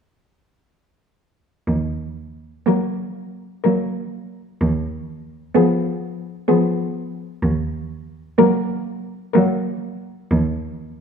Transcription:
1.67 D#2
2.66 F#3 A#3 A#4
3.64 F#3 A#3 A#4
4.61 D#2
5.55 F3 B3 G#4
6.48 F3 B3 G#4
7.42 D#2
8.38 F#3 A#3 A#4
9.34 F#3 A#3 A#4
10.31 D#2

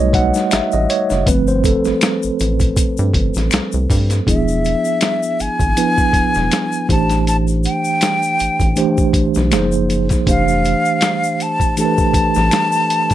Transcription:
Already playing: B1 G3 A3 D#4 B4 C#5 D#5
0.13 F#5, kick, closed hi-hat
0.34 snare, shaker
0.51 A1 E5, finger snap, snare, closed hi-hat, shaker
0.72 A1 D#5, shaker
0.89 C#5, closed hi-hat, shaker
1.10 F#1, snare, shaker
1.26 G1 F3 A3 C4 B4, kick, closed hi-hat, shaker
1.47 C5, shaker
1.64 A4, kick, closed hi-hat, shaker
1.85 A1, snare, shaker
2.01 finger snap, snare, closed hi-hat, shaker
2.23 A1, shaker
2.40 A1, closed hi-hat, shaker
2.60 kick, closed hi-hat, shaker
2.77 kick, closed hi-hat, shaker
2.97 G2, shaker
3.14 G1, kick, closed hi-hat
3.34 A1, snare, closed hi-hat, shaker
3.51 C2, finger snap, snare, closed hi-hat, shaker
3.72 C2, shaker
3.90 G2, kick, open hi-hat, shaker
4.10 snare, closed hi-hat, shaker
4.26 E1 F3 B3 D4 E4 G#4 E5, kick, closed hi-hat, shaker
4.48 shaker
4.65 closed hi-hat, shaker
4.85 shaker
5.01 finger snap, snare, closed hi-hat, shaker
5.23 shaker
5.39 G#1 G#5, closed hi-hat, shaker
5.59 G#1, kick, closed hi-hat, shaker
5.76 F3 B3 D4 E4 B4, closed hi-hat, shaker
5.98 kick, shaker
6.13 E1, kick, closed hi-hat, shaker
6.34 E1, snare, shaker
6.52 finger snap, snare, closed hi-hat, shaker
6.72 shaker
6.88 A1 E3 A3 D4 G4 C5 A5, kick, closed hi-hat, shaker
7.09 snare, closed hi-hat, shaker
7.27 A5, closed hi-hat, shaker
7.47 shaker
7.63 G5, closed hi-hat, shaker
7.84 shaker
8.01 finger snap, snare, closed hi-hat, shaker
8.22 shaker
8.39 A1, closed hi-hat, shaker
8.60 A1, kick, closed hi-hat, shaker
8.76 E3 A3 D4 G4 C5, closed hi-hat, shaker
8.98 kick, shaker
9.13 B1, kick, closed hi-hat, shaker
9.34 B1, snare, shaker
9.52 F#1 F3 A3 D#4 G#4 C5, finger snap, snare, closed hi-hat, shaker
9.59 A#3
9.72 shaker
9.90 closed hi-hat, shaker
10.09 kick, snare, closed hi-hat, shaker
10.27 F1 E3 A3 D4 G4 C5 F5, kick, closed hi-hat, shaker
10.48 shaker
10.65 closed hi-hat, shaker
10.85 shaker
11.01 finger snap, snare, closed hi-hat, shaker
11.24 shaker
11.40 A5, closed hi-hat, shaker
11.60 kick, closed hi-hat, shaker
11.77 E3 A3 D4 G4 A4 A5, closed hi-hat, shaker
11.85 B4
11.98 kick, shaker
12.14 A1, kick, closed hi-hat, shaker
12.35 A1, snare, shaker
12.51 finger snap, snare, closed hi-hat, shaker
12.72 shaker
12.90 closed hi-hat, shaker
13.10 kick, snare, closed hi-hat, shaker

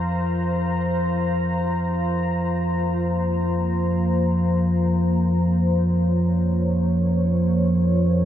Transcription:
Already playing: F2 F3 F4 C5 F5 A#5
2.41 A#3
5.51 C#5

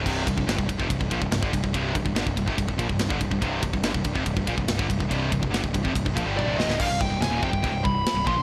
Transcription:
0.06 C1 C2 G2 C3, kick, crash
0.26 C1 C2 G2, kick, ride
0.37 C1 C2 G2, kick
0.46 G1 G2 D3, snare, ride
0.59 C1 C2 G2, kick
0.69 C1 C2 G2, kick, ride
0.79 F1 F2 C3, kick
0.90 C1 C2 G2, kick, ride
1.00 C1 C2 G2, kick
1.11 A#1 A#2 F3, kick, ride
1.21 C1 C2 G2, kick
1.30 C1 C2 G2, snare, ride
1.43 G1 G2 D3, kick
1.53 C1 C2 G2, kick, ride
1.64 C1 C2 G2, kick
1.74 C1 C2 G2 C3, kick, ride
1.95 C1 C2 G2, kick, ride
2.05 C1 C2 G2, kick
2.14 G1, snare, ride
2.18 G2 D3
2.26 C1 C2 G2, kick
2.37 C1 C2 G2, kick, ride
2.47 F1 F2 C3, kick
2.58 C1 C2 G2, kick, ride
2.68 C1 C2 G2, kick
2.78 A#1 A#2 F3, kick, ride
2.89 C1 C2 G2, kick
2.98 C1 C2 G2, snare, ride
3.09 G1 G2 D3, kick
3.20 C1 C2 G2, kick, ride
3.31 C1 C2 G2, kick
3.41 C1 C2 G2 C3, kick, ride
3.62 C1 C2 G2, kick, ride
3.73 C1 C2 G2, kick
3.82 G1 G2 D3, snare, ride
3.93 C1 C2 G2, kick
4.04 C1 C2 G2, kick, ride
4.14 F1 F2 C3, kick
4.25 C1 C2 G2, kick, ride
4.36 C1 C2 G2, kick
4.47 A#1 A#2 F3, kick, ride
4.57 C1 C2 G2, kick
4.65 C1 C2 G2, snare, ride
4.77 G1 G2 D3, kick
4.88 C1 C2 G2, kick, ride
4.98 C1 C2 G2, kick
5.09 C1 C2 G2 C3, kick, ride
5.31 C1 C2 G2, kick, ride
5.42 C1 C2 G2, kick
5.49 G1 G2 D3
5.54 snare, ride
5.63 C1 C2 G2, kick
5.73 C1 C2 G2, kick, ride
5.84 F1 F2 C3, kick
5.95 C1 C2 G2, kick, ride
6.05 C1 C2 G2, kick
6.16 A#1 A#2 F3, kick, ride
6.25 G1 G2 D3 G3
6.37 D5, high tom
6.45 C1 C2 G2 C3
6.59 D#5, snare
6.67 D1 D2 A2, snare
6.77 C1 C2 G2 F5, kick, crash
6.88 C1 C2 G2
7.00 C1 C2 G2 G5, kick
7.09 C1 C2 G2
7.19 C1 C2 G2 G#5, snare, crash
7.29 D#1 D#2 A#2
7.42 F1 F2 C3 G5, kick
7.53 C1 C2 G2, kick
7.62 D1 D2 A2, kick, crash
7.72 C1 C2 G2
7.84 C1 C2 G2 B5, kick
8.06 snare, crash
8.14 C1 C2 G2
8.26 A#1 A#2 F3 C6, kick
8.36 C1 C2 G2

